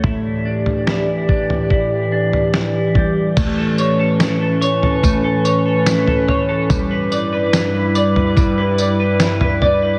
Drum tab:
CC |----------------|x---------------|----------------|
TB |----------------|x-x-x-x-x-x-x---|x-x-x-x-x-x-x---|
SD |----o-------o---|----o-------o---|----o-------o---|
FT |o--o---o---o--o-|o------oo----oo-|o------oo----oo-|
BD |o-----o-o-----o-|o-------o-------|o-------o-------|